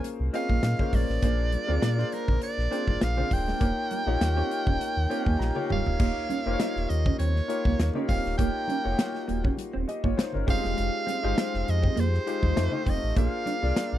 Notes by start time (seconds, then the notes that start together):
Already playing: A#3 C#4 F4 G#4 C5
0.03 muted clean electric guitar stroke, closed hi-hat, muted conga
0.20 C2
0.33 A#3 C4 C#4 F4 G#4 D#5 F5, closed hi-hat
0.49 A#1 A#3, kick, high conga
0.63 A#2, snare, closed hi-hat, muted conga, high conga
0.79 A#3 C#4 F4 G#4 C5, kick, low conga
0.93 A#1 G#3 D5, kick, open hi-hat, high conga
1.09 A1, snare
1.22 A#1 A#3 D4 F4 G#4 C5, kick, closed hi-hat, muted conga
1.52 muted clean electric guitar stroke, closed hi-hat, muted conga, high conga
1.67 D2 A#3 C4 D4 F4 G#4 D5
1.82 A#2 D4, snare, closed hi-hat, high conga
1.98 A#3 D4 F4 G#4 C5, muted clean electric guitar stroke, snare
2.12 A#4, closed hi-hat, muted conga
2.28 A#1 D4, kick, low conga
2.42 D5, closed hi-hat
2.58 A#1, snare
2.70 A#3 C4 D4 F4 G#4 C5, closed hi-hat
2.87 G#1, kick, high conga
3.01 A#1 F5, snare, closed hi-hat, muted conga, high conga
3.16 A#3 C4 D4 F4 G#4 C5, low conga
3.31 D1 G5, muted clean electric guitar stroke, kick, open hi-hat, high conga
3.48 G#3, snare
3.60 D#1 A#3 D#4 F4 G4 C#5, kick, closed hi-hat
3.91 A#3, closed hi-hat, high conga
4.06 A#1 A#3 D#4 F4 G4 C#5, muted clean electric guitar stroke
4.20 D#2, snare, closed hi-hat, muted conga, high conga
4.36 A#3 C4 D#4 F4 G4 C#5
4.51 muted clean electric guitar stroke, closed hi-hat
4.66 D#1 C#4, kick, low conga
4.81 muted clean electric guitar stroke, closed hi-hat
4.97 D#2
5.09 A#3 C4 D#4 F4 G4 C#5 G5, closed hi-hat
5.26 D#2 A#3 G#5, kick, high conga
5.39 A#1 A#5, snare, muted conga, high conga
5.55 A#3 D#4 F4 G4 C#5, low conga
5.70 C#1 G3 F5, mid tom, muted conga, high conga
5.86 D1, floor tom
5.99 D#1 A#3 D#4 F4 G4 C#5, kick, crash
6.29 C#4, closed hi-hat, high conga
6.46 F1 A#3 D#4 F4 G4 C5, muted clean electric guitar stroke
6.53 C#5
6.60 D#4, snare, closed hi-hat, muted conga, high conga
6.76 D#1, snare
6.89 D#2 D#5, muted clean electric guitar stroke, closed hi-hat, muted conga
7.05 C#4, kick, low conga
7.18 D#2 C4 C#5, closed hi-hat, muted conga, high conga
7.36 muted clean electric guitar stroke, snare
7.48 A#3 D#4 F4 G4 C#5, closed hi-hat
7.65 C#2 A#3, kick, high conga
7.79 D#2, snare, closed hi-hat, muted conga, high conga
7.94 A#3 C#4 D#4 F4 G4 C#5, low conga
8.08 D#1 C4 F5, kick, open hi-hat, muted conga, high conga
8.25 D1, snare
8.38 D#1 A#3 D#4 F4 G4 C#5 G5, kick, closed hi-hat
8.68 C#4, closed hi-hat, muted conga, high conga
8.84 F1 A#3 D#4 F4 F#4 C#5, muted clean electric guitar stroke
8.92 G4
8.98 muted clean electric guitar stroke, snare, closed hi-hat, high conga
9.15 snare
9.28 D#1 A#3, closed hi-hat, muted conga
9.44 C#4, kick, low conga
9.57 closed hi-hat, high conga
9.73 D#1 C4
9.88 G4 D#5, muted clean electric guitar stroke, closed hi-hat
10.04 G1 A#3 F4 C#5, kick, high conga
10.17 D#4 C5, muted clean electric guitar stroke, snare, closed hi-hat, muted conga, high conga
10.32 G1 C#4 A#4, low conga
10.47 F1 G#3 C4 D#4 F4 G4 C5 F5, kick, open hi-hat, high conga
10.63 E1 G#3, snare
10.77 F1 G#3, closed hi-hat, muted conga
11.06 C4, snare, closed hi-hat, muted conga, high conga
11.23 G1 G#3 D#4 F4 G4 C5, muted clean electric guitar stroke
11.36 D#4, snare, closed hi-hat, high conga
11.54 F1, snare
11.66 F2, muted clean electric guitar stroke, closed hi-hat
11.70 D#5
11.82 C4, kick, low conga
11.96 F2 A#3 C5, closed hi-hat, high conga
12.13 muted clean electric guitar stroke, snare
12.26 G#3 D#4 F4 G4 C5, closed hi-hat
12.42 D#2 G#3, kick, high conga
12.56 F2 A3 D#4 F4 G4 C5, muted clean electric guitar stroke, snare, closed hi-hat, high conga
12.71 A3 D#4 F4 G4 C5, low conga
12.86 F1 C4 D#5, kick, open hi-hat, muted conga, high conga
13.03 A1
13.16 A#1 A#3 D4 F4 G#4 C5 F5, kick, closed hi-hat
13.46 D4, snare, closed hi-hat, muted conga, high conga
13.62 C2 A#3 D4 F4 G#4 D5, muted clean electric guitar stroke
13.76 muted clean electric guitar stroke, snare, closed hi-hat, high conga
13.92 A#1